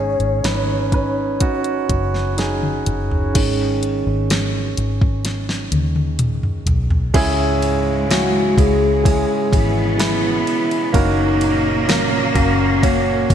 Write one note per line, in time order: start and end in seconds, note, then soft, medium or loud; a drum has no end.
0.00 0.16 G#1 medium
0.00 0.89 G#2 medium
0.00 0.39 C#4 medium
0.00 0.40 D#4 medium
0.00 0.40 G#4 medium
0.00 2.35 C#5 medium
0.20 0.42 G#1 medium
0.20 closed hi-hat soft
0.44 1.86 G#1 medium
0.44 0.90 C#4 medium
0.44 0.90 D#4 medium
0.44 0.91 B4 medium
0.44 snare medium
0.44 closed hi-hat medium
0.92 1.38 C#4 medium
0.92 1.39 D#4 medium
0.92 1.39 B4 medium
0.92 kick medium
0.92 closed hi-hat medium
1.40 2.33 C#4 medium
1.40 2.34 D#4 medium
1.40 2.34 F#4 loud
1.40 kick medium
1.40 closed hi-hat medium
1.64 closed hi-hat medium
1.89 2.84 F#1 medium
1.89 kick medium
1.89 closed hi-hat medium
2.14 snare soft
2.37 3.30 C#4 medium
2.37 3.30 D#4 medium
2.37 3.31 G#4 medium
2.37 snare medium
2.37 closed hi-hat medium
2.63 high tom medium
2.86 3.32 F#1 medium
2.86 closed hi-hat medium
2.86 mid tom medium
3.11 floor tom medium
3.34 4.03 G#1 medium
3.34 7.09 D#3 soft
3.34 7.10 G#3 soft
3.34 7.10 C#4 soft
3.34 kick medium
3.34 closed hi-hat medium
3.34 crash medium
3.83 closed hi-hat medium
4.07 4.74 G#1 medium
4.30 snare medium
4.30 closed hi-hat medium
4.77 5.68 G#1 medium
4.77 closed hi-hat medium
5.01 kick medium
5.25 snare soft
5.25 closed hi-hat medium
5.49 snare medium
5.72 6.63 D#2 medium
5.72 closed hi-hat medium
5.72 high tom medium
5.96 high tom medium
6.19 closed hi-hat medium
6.19 mid tom medium
6.43 mid tom medium
6.66 7.10 B1 medium
6.66 closed hi-hat medium
6.66 floor tom medium
6.91 floor tom medium
7.13 8.53 C#2 loud
7.13 9.48 G#2 medium
7.13 8.54 C#3 medium
7.13 9.48 G#3 medium
7.13 8.05 G#3 loud
7.13 8.05 C#4 medium
7.13 8.05 E4 loud
7.13 8.05 G#4 loud
7.13 kick loud
7.13 crash medium
7.13 ride medium
7.62 ride medium
8.09 8.55 G#3 medium
8.09 8.55 C#4 medium
8.09 8.55 E4 medium
8.09 8.55 F#4 loud
8.09 8.55 G#4 medium
8.09 snare medium
8.09 ride medium
8.56 9.25 C#2 medium
8.56 9.02 G#3 medium
8.56 9.02 C#4 medium
8.56 9.03 E4 medium
8.56 9.03 G#4 medium
8.56 9.56 G#4 loud
8.56 kick medium
8.56 ride medium
9.03 9.94 G#3 medium
9.03 9.94 C#4 medium
9.03 9.95 E4 medium
9.03 9.95 G#4 medium
9.03 kick medium
9.03 ride medium
9.52 10.43 G#1 medium
9.52 10.91 B2 medium
9.52 10.91 B3 loud
9.52 10.01 E4 loud
9.52 kick medium
9.52 ride medium
9.98 10.88 G#3 medium
9.98 10.89 C#4 medium
9.98 10.89 E4 medium
9.98 10.44 E4 loud
9.98 10.89 B4 medium
9.98 snare loud
9.98 ride medium
10.47 10.91 E4 loud
10.47 ride medium
10.71 ride soft
10.93 12.31 F#1 loud
10.93 13.34 A#2 medium
10.93 11.83 A#3 medium
10.93 13.34 A#3 loud
10.93 11.83 C#4 medium
10.93 11.91 D#4 loud
10.93 11.83 F#4 medium
10.93 11.84 A#4 loud
10.93 kick loud
10.93 ride medium
11.41 ride medium
11.87 12.32 A#3 medium
11.87 12.33 C#4 medium
11.87 12.83 C#4 loud
11.87 12.33 F#4 medium
11.87 12.33 A#4 medium
11.87 snare loud
11.87 ride medium
12.34 13.26 F#1 loud
12.34 12.79 A#3 medium
12.34 12.80 C#4 medium
12.34 12.80 F#4 medium
12.34 12.80 A#4 medium
12.34 kick medium
12.34 ride medium
12.82 13.34 A#3 medium
12.82 13.34 C#4 medium
12.82 13.34 F#4 medium
12.82 13.34 C#5 medium
12.82 kick medium
12.82 ride medium
13.30 13.34 C#2 medium
13.30 kick medium
13.30 ride medium